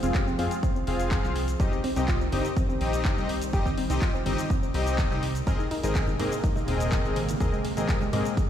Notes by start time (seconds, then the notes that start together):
Already playing: F3 G#3 C4
0.03 F1 C4 F4 G#4 F5, closed hi-hat, shaker
0.15 G4, kick, clap, closed hi-hat, shaker
0.27 C4, shaker
0.39 F2 C4 F4 G#4 F5, open hi-hat
0.51 closed hi-hat, shaker
0.63 C4, kick, closed hi-hat, shaker
0.75 C4, shaker
0.87 F1 C4 F4 G#4 F5, open hi-hat
1.00 closed hi-hat, shaker
1.11 kick, clap, closed hi-hat, shaker
1.24 C2 C4 F4 G#4 F5, clap, shaker
1.36 open hi-hat
1.48 closed hi-hat, shaker
1.60 C2 D#3 G3 C4 D#4 G4 D#5, kick, closed hi-hat, shaker
1.72 C4, shaker
1.84 C4, open hi-hat
1.96 C2 C4 D#4 G4 D#5, closed hi-hat, shaker
2.08 F4, kick, clap, closed hi-hat, shaker
2.21 C4, shaker
2.32 G1 C4 D#4 G4 D#5, open hi-hat
2.45 closed hi-hat, shaker
2.57 C4, kick, closed hi-hat, shaker
2.69 C4, shaker
2.81 A#1 C4 D#4 G4 D#5, open hi-hat
2.93 closed hi-hat, shaker
3.05 kick, clap, closed hi-hat, shaker
3.17 C2 C4 D#4 G4 D#5, shaker
3.29 open hi-hat
3.42 closed hi-hat, shaker
3.53 G1 C4 D#4 G4 D#5, kick, closed hi-hat, shaker
3.66 C4, kick, shaker
3.78 C4, open hi-hat
3.90 C2 C4 D#4 G4 D#5, closed hi-hat, shaker
4.02 F4, kick, clap, closed hi-hat, shaker
4.14 C4, shaker
4.26 G1 C4 D#4 G4 D#5, open hi-hat
4.38 closed hi-hat, shaker
4.50 C4, kick, closed hi-hat, shaker
4.62 C4, shaker
4.74 C2 C4 D#4 G4 D#5, open hi-hat
4.87 closed hi-hat, shaker
4.98 kick, clap, closed hi-hat, shaker
5.11 C2 C4 D#4 G4 D#5, clap, shaker
5.23 open hi-hat
5.35 closed hi-hat, shaker
5.47 G#1 C3 G#3 A#3 C4 G#4 A#4 D#5, kick, closed hi-hat, ride, shaker
5.59 D#4, shaker
5.71 D#4, open hi-hat, ride
5.83 G#1 C4 D#4 G#4 A#4 D#5, closed hi-hat, shaker
5.95 G#4, kick, clap, closed hi-hat, ride, shaker
6.07 D#4, high conga, low conga, shaker
6.19 G#2 C4 D#4 G#4 A#4 D#5, open hi-hat, ride, high woodblock
6.32 closed hi-hat, shaker
6.44 D#4, kick, closed hi-hat, ride, shaker
6.56 D#4, low conga, shaker
6.68 D#1 C4 G#4 A#4 D#5, open hi-hat, ride
6.80 closed hi-hat, shaker
6.92 kick, clap, closed hi-hat, ride, shaker
7.04 G#1 C4 G#4 A#4 D#5, shaker
7.16 open hi-hat, ride, low conga
7.29 closed hi-hat, high conga, shaker
7.40 D#2 C4 G#4 A#4 D#5, kick, closed hi-hat, ride, shaker
7.53 G#3, shaker
7.65 G#3, open hi-hat, ride
7.77 G#1 G#3 C4 G#4 A#4 D#5, closed hi-hat, shaker
7.89 G4, kick, clap, closed hi-hat, ride, shaker
8.01 G#3, high conga, low conga, shaker
8.13 G#2 G#3 C4 G#4 A#4 D#5, open hi-hat, ride, high woodblock
8.25 closed hi-hat, shaker
8.37 G#3, kick, closed hi-hat, ride, shaker